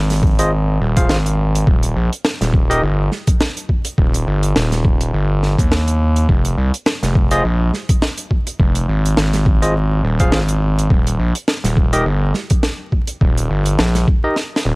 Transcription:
Already playing: G#1
0.10 snare, closed hi-hat
0.13 closed hi-hat
0.16 closed hi-hat
0.19 kick, closed hi-hat
0.27 closed hi-hat
0.31 closed hi-hat
0.35 closed hi-hat
0.39 F4 G#4 C5 D#5, closed hi-hat
0.80 D#1
0.97 F4 G#4 C5 F5, kick, closed hi-hat
1.09 G#1, snare
1.26 closed hi-hat
1.55 closed hi-hat
1.67 D#1, kick
1.83 closed hi-hat
1.96 A#1
2.13 closed hi-hat
2.25 snare
2.41 D#1, snare, closed hi-hat
2.54 kick
2.70 D#4 G4 A#4 D#5, closed hi-hat
2.83 G1
3.12 snare
3.27 kick, closed hi-hat
3.41 snare
3.57 closed hi-hat
3.69 kick
3.85 closed hi-hat
3.98 D#1, kick
4.14 closed hi-hat
4.27 G1
4.43 closed hi-hat
4.56 D#1, snare
4.72 snare, closed hi-hat
4.85 kick
5.01 closed hi-hat
5.13 G1
5.43 snare
5.59 D#2, kick, closed hi-hat
5.72 snare
5.88 closed hi-hat
6.16 closed hi-hat
6.29 F1, kick
6.45 closed hi-hat
6.58 C2
6.74 closed hi-hat
6.86 snare
7.03 F1, snare, closed hi-hat
7.15 kick
7.31 F4 G#4 C5 D#5, closed hi-hat
7.44 A#1
7.74 snare
7.89 kick, closed hi-hat
8.02 snare
8.18 closed hi-hat
8.31 kick
8.47 closed hi-hat
8.60 F1, kick
8.75 closed hi-hat
8.88 G#1
9.06 closed hi-hat
9.17 G#1, snare
9.33 snare, closed hi-hat
9.46 kick
9.62 F4 G#4 C5 D#5, closed hi-hat
10.04 D#1
10.20 F4 G#4 C5 F5, kick, closed hi-hat
10.32 G#1, snare
10.49 closed hi-hat
10.79 closed hi-hat
10.90 D#1, kick
11.07 closed hi-hat
11.19 A#1
11.35 closed hi-hat
11.48 snare
11.64 D#1, snare, closed hi-hat
11.77 kick
11.93 D#4 G4 A#4 D#5, closed hi-hat
12.05 G1
12.34 snare
12.50 kick, closed hi-hat
12.63 snare
12.92 kick
13.07 closed hi-hat
13.21 D#1, kick
13.37 closed hi-hat
13.50 G1
13.66 closed hi-hat
13.79 A#1, snare
13.95 snare, closed hi-hat
14.08 kick
14.24 D#4 G4 A#4 D#5
14.36 snare
14.56 snare
14.65 D#1

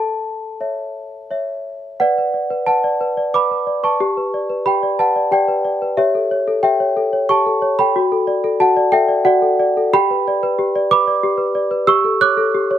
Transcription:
Already playing: A4 A5
0.60 C#5 E5
1.31 C#5 E5
2.00 B4 D5 F#5
2.18 B4
2.34 D5
2.50 B4
2.67 B4 F#5 A5
2.84 D5
3.01 B4
3.17 D5
3.34 B4 B5 D6
3.51 B4
3.67 D5
3.83 B4 A5 C#6
4.00 G4
4.17 B4
4.34 D5
4.50 B4
4.66 G4 G5 B5
4.83 D5
4.99 B4 F#5 A5
5.16 D5
5.31 G4 D5 G5
5.48 B4
5.65 D5
5.82 B4
5.97 G4 C#5 E5
6.15 A4
6.31 C#5
6.48 A4
6.63 G4 E5 G5
6.80 C#5
6.97 A4
7.13 C#5
7.29 G4 A5 C#6
7.46 A4
7.62 C#5
7.79 A4 G5 B5
7.96 F#4
8.12 A4
8.27 D5
8.44 A4
8.60 F#4 F#5 A5
8.77 D5
8.92 A4 E5 G5
9.08 D5
9.25 F#4 D5 F#5
9.42 A4
9.59 D5
9.77 A4
9.93 G4 G5 B5
10.10 B4
10.28 D5
10.43 B4
10.59 G4
10.75 D5
10.91 B4 B5 D6
11.07 D5
11.23 G4
11.38 B4
11.55 D5
11.71 B4
11.87 G4 C#6 E6
12.05 A4
12.21 C#5 D6 F#6
12.37 A4
12.54 G4
12.71 C#5

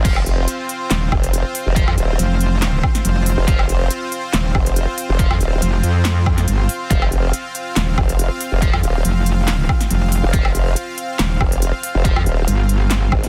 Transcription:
Already playing: C4 F4
0.05 F1 F4 C5 F5, kick, closed hi-hat, crash
0.16 low woodblock
0.26 closed hi-hat
0.48 closed hi-hat
0.69 closed hi-hat
0.91 D#1, snare, clap, closed hi-hat
1.12 F1, kick, low woodblock
1.24 closed hi-hat
1.33 closed hi-hat
1.55 open hi-hat
1.66 F1
1.76 F4 C5 F5, kick, closed hi-hat
1.88 F2, low woodblock
1.98 D#1, closed hi-hat
2.19 F1, closed hi-hat
2.41 closed hi-hat
2.62 snare, clap, closed hi-hat
2.83 kick, low woodblock
2.95 snare, closed hi-hat
3.05 F1, closed hi-hat
3.26 open hi-hat
3.38 F1
3.47 F1 F4 C5 F5, kick, closed hi-hat
3.59 low woodblock
3.69 closed hi-hat
3.91 closed hi-hat
4.12 closed hi-hat
4.33 D#1, snare, clap, closed hi-hat
4.55 F1, kick, low woodblock
4.66 closed hi-hat
4.76 closed hi-hat
4.98 open hi-hat
5.09 F1
5.19 F4 C5 F5, kick, closed hi-hat
5.31 F2, low woodblock
5.41 D#1, closed hi-hat
5.62 F1, closed hi-hat
5.83 F2, closed hi-hat
6.05 snare, clap, closed hi-hat
6.26 kick, low woodblock
6.38 snare, closed hi-hat
6.48 G1, closed hi-hat
6.69 open hi-hat
6.90 F1 F4 C5 F5, kick, closed hi-hat
7.02 low woodblock
7.12 closed hi-hat
7.33 closed hi-hat
7.55 closed hi-hat
7.76 D#1, snare, clap, closed hi-hat
7.98 F1, kick, low woodblock
8.09 closed hi-hat
8.19 closed hi-hat
8.41 open hi-hat
8.52 F1
8.62 F4 C5 F5, kick, closed hi-hat
8.73 F2, low woodblock
8.83 D#1, closed hi-hat
9.05 F1, closed hi-hat
9.26 closed hi-hat
9.48 snare, clap, closed hi-hat
9.69 kick, low woodblock
9.81 snare, closed hi-hat
9.91 F1, closed hi-hat
10.12 open hi-hat
10.23 F1
10.33 F1 F4 C5 F5, kick, closed hi-hat
10.45 low woodblock
10.55 closed hi-hat
10.76 closed hi-hat
10.98 closed hi-hat
11.19 D#1, snare, clap, closed hi-hat
11.41 F1, kick, low woodblock
11.52 closed hi-hat
11.62 closed hi-hat
11.83 open hi-hat
11.95 F1
12.05 F4 C5 F5, kick, closed hi-hat
12.16 F2, low woodblock
12.26 D#1, closed hi-hat
12.48 G1, closed hi-hat
12.69 closed hi-hat
12.91 snare, clap, closed hi-hat
13.12 G#1, kick, low woodblock
13.24 snare, closed hi-hat

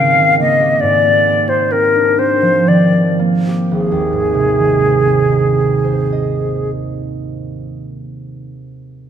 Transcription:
Already playing: G#2 D#3 G#3 A#3 C4 D#4 G4
0.00 C#3 F5
0.19 D#3
0.40 A#3 D#5
0.60 G4
0.81 G#2 D5
1.05 A#3
1.27 C4
1.49 G4 C5
1.72 C4 A#4
1.95 D4
2.18 C4 C5
2.42 F3
2.68 D#3 D5
2.92 F3
3.19 A#3
3.47 G4
3.71 G#1 G#4
3.92 D#2
4.13 G#2
4.34 C3
4.58 D#3
4.81 G#3
5.06 C4
5.32 D#4
5.59 G#4
5.84 C5
6.13 D#5

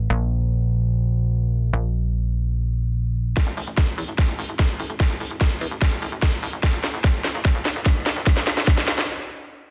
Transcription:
0.10 A#1
1.73 A#1
3.37 kick, snare, closed hi-hat
3.47 A1, closed hi-hat
3.57 A1, open hi-hat
3.67 A1, closed hi-hat
3.77 kick, snare, closed hi-hat
3.88 closed hi-hat
3.98 E2, open hi-hat
4.08 A1, closed hi-hat
4.18 kick, snare, closed hi-hat
4.28 A1, closed hi-hat
4.39 A1, open hi-hat
4.49 A1, closed hi-hat
4.59 kick, snare, closed hi-hat
4.69 closed hi-hat
4.80 A1, open hi-hat
4.90 A1, closed hi-hat
5.00 kick, snare, closed hi-hat
5.10 A1, closed hi-hat
5.20 A1, open hi-hat
5.31 A1, closed hi-hat
5.41 kick, snare, closed hi-hat
5.51 closed hi-hat
5.61 E2, open hi-hat
5.71 A1, closed hi-hat
5.82 kick, snare, closed hi-hat
5.92 A1, closed hi-hat
6.02 A1, open hi-hat
6.12 A1, closed hi-hat
6.22 kick, snare, closed hi-hat
6.33 closed hi-hat
6.43 A1, open hi-hat
6.53 A1, closed hi-hat
6.63 kick, snare, closed hi-hat
6.73 A#1, closed hi-hat
6.84 A#1, snare, open hi-hat
6.94 A#1, closed hi-hat
7.04 kick, snare, closed hi-hat
7.14 closed hi-hat
7.24 F2, snare, open hi-hat
7.35 A#1, closed hi-hat
7.45 kick, snare, closed hi-hat
7.55 A#1, closed hi-hat
7.65 A#1, snare, open hi-hat
7.75 A#1, closed hi-hat
7.86 kick, snare, closed hi-hat
7.96 closed hi-hat
8.06 A#1, snare, open hi-hat
8.16 A#1, closed hi-hat
8.26 kick, snare, closed hi-hat
8.37 A#1, snare, closed hi-hat
8.47 A#1, snare, open hi-hat
8.57 A#1, snare
8.67 kick, snare, closed hi-hat
8.77 snare, closed hi-hat
8.88 F2, snare, open hi-hat
8.98 A#1, snare, closed hi-hat

